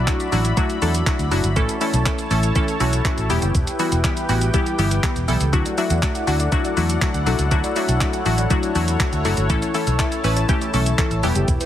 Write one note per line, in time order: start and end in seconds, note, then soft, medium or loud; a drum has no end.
0.00 1.52 F#4 medium
0.00 1.52 D5 medium
0.00 1.52 E5 medium
0.00 1.54 B5 medium
0.07 0.28 F#3 medium
0.07 0.28 A3 medium
0.07 0.28 D4 medium
0.07 0.28 E4 medium
0.07 0.29 F#4 loud
0.07 kick loud
0.07 clap loud
0.07 shaker medium
0.20 closed hi-hat medium
0.20 shaker medium
0.32 0.52 A1 loud
0.32 0.53 F#3 medium
0.32 0.53 A3 medium
0.32 0.53 D4 medium
0.32 0.53 E4 medium
0.32 0.53 F#4 loud
0.32 open hi-hat medium
0.32 shaker medium
0.45 closed hi-hat medium
0.45 shaker medium
0.57 0.78 F#3 loud
0.57 0.78 A3 loud
0.57 0.78 D4 loud
0.57 0.78 E4 loud
0.57 0.78 F#4 loud
0.57 kick loud
0.57 shaker medium
0.70 closed hi-hat soft
0.70 shaker soft
0.82 1.01 E2 loud
0.82 1.03 F#3 medium
0.82 1.03 A3 medium
0.82 1.03 D4 medium
0.82 1.03 E4 medium
0.82 1.03 A4 loud
0.82 open hi-hat medium
0.82 shaker medium
0.95 closed hi-hat loud
0.95 shaker loud
1.06 1.27 F#3 medium
1.06 1.27 A3 medium
1.06 1.28 D4 medium
1.06 1.28 E4 medium
1.06 1.28 F#4 loud
1.06 kick loud
1.06 clap loud
1.06 shaker medium
1.19 1.29 D2 loud
1.19 closed hi-hat medium
1.19 shaker medium
1.31 1.41 F#1 medium
1.31 1.52 F#3 medium
1.31 1.52 A3 medium
1.31 1.52 D4 medium
1.31 1.52 E4 medium
1.31 1.52 F#4 loud
1.31 open hi-hat medium
1.31 shaker soft
1.44 1.54 G1 medium
1.44 closed hi-hat medium
1.44 shaker medium
1.56 1.77 E3 loud
1.56 1.77 A3 loud
1.56 1.77 C#4 loud
1.56 1.77 E4 loud
1.56 11.66 E4 medium
1.56 3.28 A4 medium
1.56 1.77 A4 loud
1.56 3.28 C#5 medium
1.56 3.28 A5 medium
1.56 kick loud
1.56 shaker medium
1.69 closed hi-hat medium
1.69 shaker medium
1.81 2.02 E3 medium
1.81 2.02 A3 medium
1.81 2.02 C#4 medium
1.81 2.02 E4 medium
1.81 2.02 A4 loud
1.81 open hi-hat medium
1.81 shaker medium
1.94 2.03 B1 medium
1.94 closed hi-hat medium
1.94 shaker medium
2.06 2.27 E3 medium
2.06 2.27 A3 medium
2.06 2.27 C#4 medium
2.06 2.27 E4 medium
2.06 2.27 A4 loud
2.06 kick loud
2.06 clap loud
2.06 shaker medium
2.19 closed hi-hat medium
2.19 shaker medium
2.31 2.50 A1 loud
2.31 2.51 E3 medium
2.31 2.52 A3 medium
2.31 2.52 C#4 medium
2.31 2.52 E4 medium
2.31 2.52 A4 medium
2.31 open hi-hat medium
2.31 shaker soft
2.43 closed hi-hat medium
2.43 shaker medium
2.55 2.76 E3 loud
2.55 2.76 A3 loud
2.55 2.76 C#4 loud
2.55 2.76 E4 loud
2.55 2.77 A4 loud
2.55 kick loud
2.55 shaker medium
2.68 closed hi-hat soft
2.68 shaker soft
2.80 3.00 B1 loud
2.80 3.01 E3 medium
2.80 3.01 A3 medium
2.80 3.01 C#4 medium
2.80 3.01 E4 medium
2.80 3.01 F#4 loud
2.80 open hi-hat medium
2.80 shaker medium
2.93 closed hi-hat loud
2.93 shaker loud
3.05 3.26 E3 medium
3.05 3.26 A3 medium
3.05 3.26 C#4 medium
3.05 3.26 E4 medium
3.05 3.26 F#4 loud
3.05 kick loud
3.05 clap loud
3.05 shaker medium
3.18 3.27 A1 medium
3.18 closed hi-hat medium
3.18 shaker medium
3.30 3.40 E1 loud
3.30 3.71 E3 loud
3.30 3.71 G3 medium
3.30 3.71 B3 medium
3.30 3.72 E4 medium
3.30 5.51 G4 medium
3.30 3.72 G4 loud
3.30 5.51 B4 medium
3.30 5.51 G5 medium
3.30 open hi-hat medium
3.30 shaker medium
3.42 3.52 F#1 medium
3.42 closed hi-hat medium
3.42 shaker medium
3.55 3.64 E1 loud
3.55 kick loud
3.55 shaker medium
3.67 closed hi-hat medium
3.67 shaker medium
3.79 4.00 E3 medium
3.79 4.00 G3 medium
3.79 4.00 B3 medium
3.79 4.00 E4 medium
3.79 4.00 F#4 loud
3.79 open hi-hat medium
3.79 shaker medium
3.92 4.02 E1 loud
3.92 closed hi-hat medium
3.92 shaker medium
4.04 4.25 E3 medium
4.04 4.25 G3 medium
4.04 4.25 B3 medium
4.04 4.25 E4 medium
4.04 4.25 G4 loud
4.04 kick loud
4.04 clap loud
4.04 shaker medium
4.17 closed hi-hat medium
4.17 shaker medium
4.29 4.48 A1 loud
4.29 4.50 E3 medium
4.29 4.50 G3 medium
4.29 4.50 B3 medium
4.29 4.50 E4 medium
4.29 4.50 F#4 loud
4.29 open hi-hat medium
4.29 shaker medium
4.41 closed hi-hat medium
4.41 shaker medium
4.54 4.75 E3 loud
4.54 4.75 G3 loud
4.54 4.75 B3 loud
4.54 4.75 E4 loud
4.54 4.75 G4 loud
4.54 kick loud
4.54 shaker medium
4.66 closed hi-hat soft
4.66 shaker soft
4.79 4.98 G1 loud
4.79 4.99 E3 medium
4.79 4.99 G3 medium
4.79 4.99 B3 medium
4.79 5.00 E4 medium
4.79 5.00 G4 loud
4.79 open hi-hat medium
4.79 shaker medium
4.91 closed hi-hat loud
4.91 shaker loud
5.03 5.24 E3 medium
5.03 5.24 G3 medium
5.03 5.24 B3 medium
5.03 5.24 E4 medium
5.03 5.24 G4 loud
5.03 kick loud
5.03 clap loud
5.03 shaker medium
5.16 5.26 E1 medium
5.16 closed hi-hat medium
5.16 shaker medium
5.28 5.38 B1 medium
5.28 5.49 E3 medium
5.28 5.49 G3 medium
5.28 5.49 B3 medium
5.28 5.49 E4 medium
5.28 5.49 A4 loud
5.28 open hi-hat medium
5.28 shaker medium
5.41 5.50 C#2 medium
5.41 closed hi-hat medium
5.41 shaker medium
5.53 5.63 D2 loud
5.53 5.74 F#3 loud
5.53 5.74 A3 loud
5.53 5.74 D4 loud
5.53 5.74 E4 loud
5.53 5.65 F#4 loud
5.53 5.74 F#4 loud
5.53 11.19 A4 medium
5.53 7.50 D5 medium
5.53 9.46 F#5 medium
5.53 kick loud
5.53 shaker medium
5.66 5.77 D5 medium
5.66 closed hi-hat medium
5.66 shaker medium
5.78 5.99 F#3 medium
5.78 5.99 A3 medium
5.78 5.99 D4 medium
5.78 5.99 E4 medium
5.78 5.99 F#4 loud
5.78 5.90 E5 medium
5.78 open hi-hat medium
5.78 shaker medium
5.90 6.00 E2 medium
5.90 6.02 F#5 medium
5.90 closed hi-hat medium
5.90 shaker medium
6.02 6.23 F#3 medium
6.02 6.23 A3 medium
6.02 6.23 D4 medium
6.02 6.23 E4 medium
6.02 6.24 F#4 loud
6.02 6.14 E5 medium
6.02 kick loud
6.02 clap loud
6.02 shaker medium
6.15 6.26 F#5 medium
6.15 closed hi-hat medium
6.15 shaker medium
6.27 6.47 D2 loud
6.27 6.48 F#3 medium
6.27 6.48 A3 medium
6.27 6.48 D4 medium
6.27 6.48 E4 medium
6.27 6.48 F#4 loud
6.27 6.39 F#5 medium
6.27 open hi-hat medium
6.27 shaker medium
6.40 6.52 D5 medium
6.40 closed hi-hat medium
6.40 shaker medium
6.52 6.73 F#3 loud
6.52 6.73 A3 loud
6.52 6.73 D4 loud
6.52 6.73 E4 loud
6.52 6.73 F#4 loud
6.52 kick loud
6.52 shaker medium
6.65 6.76 D5 medium
6.65 closed hi-hat soft
6.65 shaker soft
6.77 6.96 E2 loud
6.77 6.98 F#3 medium
6.77 6.98 A3 medium
6.77 6.98 D4 medium
6.77 6.98 E4 medium
6.77 6.98 F#4 loud
6.77 open hi-hat medium
6.77 shaker medium
6.90 closed hi-hat loud
6.90 shaker loud
7.01 7.22 F#3 medium
7.01 7.22 A3 medium
7.01 7.23 D4 medium
7.01 7.23 E4 medium
7.01 7.23 F#4 medium
7.01 kick loud
7.01 clap loud
7.01 shaker medium
7.14 7.24 D2 medium
7.14 7.26 F#5 medium
7.14 closed hi-hat medium
7.14 shaker medium
7.26 7.36 B1 loud
7.26 7.47 F#3 medium
7.26 7.47 A3 medium
7.26 7.47 D4 medium
7.26 7.47 E4 medium
7.26 7.47 F#4 loud
7.26 7.38 A4 medium
7.26 open hi-hat medium
7.26 shaker medium
7.39 7.49 C#2 medium
7.39 7.51 A4 medium
7.39 closed hi-hat medium
7.39 shaker medium
7.51 7.61 D2 loud
7.51 7.72 F#3 loud
7.51 7.72 A3 loud
7.51 7.72 D4 loud
7.51 7.72 E4 loud
7.51 7.63 F#4 loud
7.51 7.72 F#4 loud
7.51 11.20 C#5 medium
7.51 kick loud
7.51 shaker medium
7.64 7.76 D5 medium
7.64 closed hi-hat medium
7.64 shaker medium
7.76 7.97 F#3 medium
7.76 7.97 A3 medium
7.76 7.97 D4 medium
7.76 7.97 E4 medium
7.76 7.97 F#4 loud
7.76 7.88 E5 medium
7.76 open hi-hat medium
7.76 shaker medium
7.89 7.98 B1 medium
7.89 8.00 F#5 medium
7.89 closed hi-hat medium
7.89 shaker medium
8.01 8.22 F#3 medium
8.01 8.22 A3 medium
8.01 8.22 D4 medium
8.01 8.22 E4 medium
8.01 8.22 F#4 loud
8.01 8.13 E5 medium
8.01 kick loud
8.01 clap loud
8.01 shaker medium
8.13 8.25 F#5 medium
8.13 closed hi-hat medium
8.13 shaker medium
8.26 8.45 A1 loud
8.26 8.46 F#3 medium
8.26 8.47 A3 medium
8.26 8.47 D4 medium
8.26 8.47 E4 medium
8.26 8.47 F#4 loud
8.26 8.38 F#5 medium
8.26 open hi-hat medium
8.26 shaker medium
8.38 8.50 D5 medium
8.38 closed hi-hat medium
8.38 shaker medium
8.50 8.71 F#3 loud
8.50 8.71 A3 loud
8.50 8.71 D4 loud
8.50 8.71 E4 loud
8.50 8.71 F#4 loud
8.50 kick loud
8.50 shaker medium
8.63 8.75 D5 medium
8.63 closed hi-hat soft
8.63 shaker soft
8.75 8.95 E2 loud
8.75 8.96 F#3 medium
8.75 8.96 A3 medium
8.75 8.96 D4 medium
8.75 8.96 E4 medium
8.75 8.96 F#4 loud
8.75 open hi-hat medium
8.75 shaker medium
8.88 closed hi-hat loud
8.88 shaker loud
9.00 9.21 F#3 medium
9.00 9.21 A3 medium
9.00 9.21 D4 medium
9.00 9.21 E4 medium
9.00 9.21 F#4 loud
9.00 kick loud
9.00 clap loud
9.00 shaker medium
9.13 9.22 D2 loud
9.13 9.24 F#5 medium
9.13 closed hi-hat medium
9.13 shaker medium
9.25 9.35 F#1 medium
9.25 9.46 F#3 medium
9.25 9.46 A3 medium
9.25 9.46 D4 medium
9.25 9.46 E4 medium
9.25 9.46 F#4 loud
9.25 9.36 A4 medium
9.25 open hi-hat medium
9.25 shaker soft
9.37 9.47 G1 loud
9.37 9.49 A4 medium
9.37 closed hi-hat medium
9.37 shaker medium
9.50 9.70 E3 loud
9.50 9.70 A3 loud
9.50 9.71 C#4 loud
9.50 9.61 E4 loud
9.50 9.71 E4 loud
9.50 9.71 A4 loud
9.50 11.22 A5 medium
9.50 kick loud
9.50 shaker medium
9.62 9.74 C#5 medium
9.62 closed hi-hat medium
9.62 shaker medium
9.74 9.95 E3 medium
9.74 9.95 A3 medium
9.74 9.95 C#4 medium
9.74 9.95 E4 medium
9.74 9.95 A4 loud
9.74 9.86 E5 medium
9.74 open hi-hat medium
9.74 shaker medium
9.87 9.97 B1 loud
9.87 9.99 E6 medium
9.87 closed hi-hat medium
9.87 shaker medium
9.99 10.20 E3 medium
9.99 10.20 A3 medium
9.99 10.20 C#4 medium
9.99 10.20 E4 medium
9.99 10.20 A4 loud
9.99 10.11 E5 medium
9.99 kick loud
9.99 clap loud
9.99 shaker medium
10.12 10.23 E6 medium
10.12 closed hi-hat medium
10.12 shaker medium
10.24 10.44 A1 loud
10.24 10.45 E3 medium
10.24 10.45 A3 medium
10.24 10.45 C#4 medium
10.24 10.45 E4 medium
10.24 10.45 B4 loud
10.24 10.36 E6 medium
10.24 open hi-hat medium
10.24 shaker medium
10.37 10.48 C#5 medium
10.37 closed hi-hat medium
10.37 shaker medium
10.49 10.70 E3 loud
10.49 10.70 A3 loud
10.49 10.70 C#4 loud
10.49 10.70 E4 loud
10.49 10.70 G4 loud
10.49 kick loud
10.49 shaker medium
10.61 10.73 C#5 medium
10.61 closed hi-hat soft
10.61 shaker soft
10.73 10.93 B1 loud
10.73 10.94 E3 medium
10.73 10.94 A3 medium
10.73 10.95 C#4 medium
10.73 10.95 E4 medium
10.73 10.95 A4 loud
10.73 open hi-hat medium
10.73 shaker medium
10.86 closed hi-hat loud
10.86 shaker loud
10.98 11.19 E3 medium
10.98 11.19 A3 medium
10.98 11.19 C#4 medium
10.98 11.19 E4 medium
10.98 11.19 A4 loud
10.98 kick loud
10.98 clap loud
10.98 shaker medium
11.11 11.21 A1 loud
11.11 11.23 E6 medium
11.11 closed hi-hat medium
11.11 shaker medium
11.23 11.33 E1 loud
11.23 11.65 E3 loud
11.23 11.65 G3 medium
11.23 11.65 B3 medium
11.23 11.65 E4 medium
11.23 11.35 G4 medium
11.23 11.66 G4 medium
11.23 11.65 G4 loud
11.23 11.66 B4 medium
11.23 11.66 G5 medium
11.23 open hi-hat medium
11.23 shaker soft
11.36 11.45 F#1 medium
11.36 11.47 G4 medium
11.36 closed hi-hat medium
11.36 shaker medium
11.48 11.58 E1 loud
11.48 11.60 E4 loud
11.48 kick loud
11.48 shaker medium
11.61 11.66 B4 medium
11.61 closed hi-hat medium
11.61 shaker medium